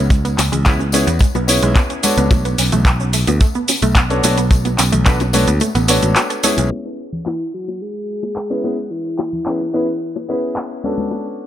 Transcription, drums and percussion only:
0.10 kick, closed hi-hat, tambourine, shaker
0.25 closed hi-hat, tambourine, shaker
0.38 clap, open hi-hat, tambourine, high bongo, shaker
0.52 closed hi-hat, tambourine, low conga, shaker
0.65 kick, clap, closed hi-hat, tambourine, shaker
0.79 high bongo, shaker
0.92 open hi-hat, tambourine, shaker
1.07 closed hi-hat, tambourine, shaker
1.19 kick, closed hi-hat, tambourine, shaker
1.35 high bongo, shaker
1.48 open hi-hat, tambourine, shaker
1.62 closed hi-hat, shaker
1.76 kick, clap, closed hi-hat, tambourine, high bongo, shaker
1.90 closed hi-hat, shaker
2.03 open hi-hat, tambourine, high conga, shaker
2.17 closed hi-hat, tambourine, high conga, shaker
2.31 kick, closed hi-hat, tambourine, high bongo, shaker
2.45 closed hi-hat, tambourine, shaker
2.58 open hi-hat, tambourine, shaker
2.72 closed hi-hat, tambourine, high bongo, low conga, shaker
2.85 kick, clap, closed hi-hat, tambourine, shaker
3.00 shaker
3.13 open hi-hat, tambourine, shaker
3.27 closed hi-hat, tambourine, high bongo, shaker
3.41 kick, closed hi-hat, tambourine, shaker
3.55 shaker
3.68 open hi-hat, tambourine, high bongo, shaker
3.82 closed hi-hat, tambourine, shaker
3.95 kick, clap, closed hi-hat, tambourine, shaker
4.10 closed hi-hat, shaker
4.24 open hi-hat, tambourine, high bongo, shaker
4.38 closed hi-hat, tambourine, shaker
4.51 kick, closed hi-hat, tambourine, shaker
4.65 closed hi-hat, tambourine, high bongo, shaker
4.78 clap, open hi-hat, tambourine, shaker
4.93 closed hi-hat, tambourine, low conga, shaker
5.06 kick, clap, closed hi-hat, tambourine, shaker
5.20 closed hi-hat, tambourine, high bongo, shaker
5.33 open hi-hat, tambourine, high conga, shaker
5.47 closed hi-hat, tambourine, shaker
5.60 closed hi-hat, tambourine, high bongo, shaker
5.75 closed hi-hat, tambourine, shaker
5.88 open hi-hat, tambourine, shaker
6.02 closed hi-hat, tambourine, high conga, shaker
6.16 clap, closed hi-hat, tambourine, high bongo, shaker
6.30 closed hi-hat, tambourine, shaker
6.43 open hi-hat, tambourine, high conga, shaker
6.57 closed hi-hat, tambourine, high bongo, high conga, shaker
6.71 crash, tambourine, high bongo
6.85 tambourine
7.13 tambourine, low conga
7.26 clap, tambourine, high bongo
7.68 tambourine, high bongo
8.23 tambourine, high bongo
8.36 clap
8.64 high bongo
8.92 tambourine
9.06 tambourine
9.18 clap, high bongo
9.33 tambourine, low conga
9.46 clap, tambourine
9.61 tambourine, high bongo
9.88 tambourine
10.02 tambourine
10.15 tambourine, high bongo
10.43 tambourine
10.56 clap, tambourine, high bongo
10.71 tambourine
10.84 high conga
10.98 tambourine, high conga
11.10 tambourine, high bongo
11.25 tambourine

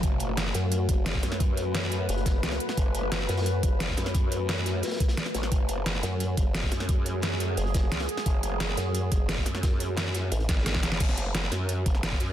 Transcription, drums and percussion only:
0.03 kick, closed hi-hat
0.19 closed hi-hat
0.37 snare, closed hi-hat
0.54 snare, closed hi-hat
0.72 closed hi-hat
0.89 kick, closed hi-hat
1.05 snare, closed hi-hat, open hi-hat
1.14 kick, snare
1.23 snare, closed hi-hat
1.32 snare, closed hi-hat
1.40 kick, closed hi-hat
1.57 closed hi-hat
1.75 snare, closed hi-hat
1.92 closed hi-hat
2.09 closed hi-hat
2.17 closed hi-hat
2.26 kick, snare, closed hi-hat
2.43 snare, closed hi-hat
2.52 snare, closed hi-hat
2.60 closed hi-hat
2.69 snare, closed hi-hat
2.77 kick, closed hi-hat
2.95 closed hi-hat
3.12 snare, closed hi-hat
3.28 snare, closed hi-hat
3.37 snare, closed hi-hat
3.41 snare, closed hi-hat
3.46 closed hi-hat
3.63 kick, closed hi-hat
3.80 snare, closed hi-hat, open hi-hat
3.89 kick, snare
3.97 snare, closed hi-hat
4.06 snare, closed hi-hat
4.14 kick, closed hi-hat
4.32 closed hi-hat
4.49 snare, closed hi-hat
4.66 snare, closed hi-hat
4.83 snare, closed hi-hat
4.87 snare, closed hi-hat
4.91 snare, closed hi-hat
4.96 kick, snare, closed hi-hat
5.00 snare, closed hi-hat
5.08 snare, closed hi-hat
5.17 snare, closed hi-hat
5.26 snare, closed hi-hat
5.34 snare, closed hi-hat
5.43 snare
5.52 kick, closed hi-hat
5.68 closed hi-hat
5.86 snare, closed hi-hat
6.03 snare, closed hi-hat
6.20 closed hi-hat
6.37 kick, closed hi-hat
6.55 snare, closed hi-hat, open hi-hat
6.63 kick, snare
6.72 snare, closed hi-hat
6.80 snare, closed hi-hat
6.89 kick, closed hi-hat
7.06 closed hi-hat
7.22 snare, closed hi-hat
7.40 closed hi-hat
7.57 closed hi-hat
7.67 closed hi-hat
7.74 kick, snare, closed hi-hat
7.92 snare, closed hi-hat
8.00 snare, closed hi-hat
8.09 closed hi-hat
8.17 snare, closed hi-hat
8.26 kick, closed hi-hat
8.43 closed hi-hat
8.60 snare, closed hi-hat
8.77 snare, closed hi-hat
8.94 closed hi-hat
9.12 kick, closed hi-hat
9.29 snare, closed hi-hat, open hi-hat
9.36 kick, snare
9.46 snare, closed hi-hat
9.55 snare
9.63 kick, snare, closed hi-hat
9.80 closed hi-hat
9.97 snare, closed hi-hat
10.14 snare, closed hi-hat
10.31 closed hi-hat
10.40 closed hi-hat
10.49 kick, snare, closed hi-hat
10.58 snare
10.66 snare, closed hi-hat
10.75 kick, snare
10.83 snare, closed hi-hat
10.92 snare
11.00 kick, closed hi-hat, crash
11.09 snare
11.17 closed hi-hat
11.34 snare, closed hi-hat
11.52 snare, closed hi-hat
11.69 closed hi-hat
11.86 kick, closed hi-hat
11.95 snare
12.03 snare, closed hi-hat, open hi-hat
12.12 kick, snare
12.20 closed hi-hat

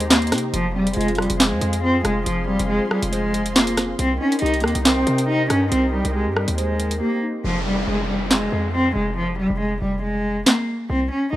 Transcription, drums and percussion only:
0.00 closed hi-hat
0.11 snare, clap
0.22 closed hi-hat
0.27 closed hi-hat
0.32 cross-stick, snare, closed hi-hat
0.38 closed hi-hat
0.54 closed hi-hat
0.87 closed hi-hat
0.93 closed hi-hat
1.01 closed hi-hat
1.08 closed hi-hat
1.15 cross-stick, closed hi-hat
1.22 closed hi-hat
1.30 closed hi-hat
1.40 snare, clap, closed hi-hat
1.61 closed hi-hat
1.73 closed hi-hat
2.05 cross-stick, closed hi-hat
2.26 closed hi-hat
2.59 closed hi-hat
2.91 cross-stick
3.03 closed hi-hat
3.13 closed hi-hat
3.34 closed hi-hat
3.46 closed hi-hat
3.56 snare, clap
3.67 closed hi-hat
3.77 cross-stick, snare, closed hi-hat
3.99 closed hi-hat
4.32 closed hi-hat
4.39 closed hi-hat
4.46 closed hi-hat
4.54 closed hi-hat
4.60 cross-stick, closed hi-hat
4.68 closed hi-hat
4.75 closed hi-hat
4.85 snare, clap, closed hi-hat
5.07 closed hi-hat
5.18 closed hi-hat
5.50 cross-stick, closed hi-hat
5.72 closed hi-hat
6.05 closed hi-hat
6.37 cross-stick
6.48 closed hi-hat
6.58 closed hi-hat
6.80 closed hi-hat
6.91 closed hi-hat
8.31 snare, clap
10.46 snare, clap

